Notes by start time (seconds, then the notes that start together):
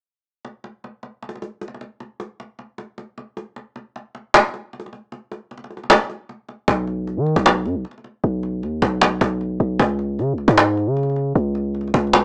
0.45 cajon slap
0.64 cajon slap
0.84 cajon slap
1.03 cajon slap
1.22 cajon slap
1.29 cajon slap
1.35 cajon slap
1.42 cajon slap
1.61 cajon slap
1.68 cajon slap
1.74 cajon slap
1.81 cajon slap
2.00 cajon slap
2.20 cajon slap
2.40 cajon slap
2.59 cajon slap
2.78 cajon slap
2.98 cajon slap
3.18 cajon slap
3.37 cajon slap
3.56 cajon slap
3.76 cajon slap
3.96 cajon slap
4.15 cajon slap
4.34 cajon slap
4.41 cajon slap
4.47 cajon slap
4.54 cajon slap
4.73 cajon slap
4.80 cajon slap
4.86 cajon slap
4.93 cajon slap
5.12 cajon slap
5.32 cajon slap
5.51 cajon slap
5.58 cajon slap
5.64 cajon slap
5.71 cajon slap
5.77 cajon slap
5.84 cajon slap
5.90 cajon slap
5.97 cajon slap
6.03 cajon slap
6.10 cajon slap
6.29 cajon slap
6.49 cajon slap
6.68 B1, cajon bass
6.87 cajon slap
7.07 cajon slap
7.17 D#3
7.26 cajon slap
7.36 B1, cajon bass
7.46 cajon slap
7.52 cajon slap
7.59 cajon slap
7.65 F#2, cajon slap
7.75 B1
7.85 cajon slap
7.91 cajon slap
7.98 cajon slap
8.04 cajon slap
8.24 B1, cajon slap
8.43 cajon slap
8.63 D#2, cajon slap
8.82 B1, cajon bass
9.02 cajon slap
9.21 B1, cajon bass
9.41 cajon slap
9.60 B1, cajon slap
9.80 C#2, cajon bass
9.99 cajon slap
10.19 C#3, cajon slap
10.33 C#2
10.38 cajon slap
10.48 G#2, cajon bass
10.57 cajon slap
10.64 cajon slap
10.71 cajon slap
10.77 cajon slap
10.87 C#3
10.97 cajon slap
11.03 cajon slap
11.10 cajon slap
11.16 cajon slap
11.35 C#2, cajon slap
11.55 cajon slap
11.74 cajon slap
11.81 cajon slap
11.87 cajon slap
11.94 C#2, cajon bass
12.07 cajon slap
12.13 cajon slap
12.20 cajon slap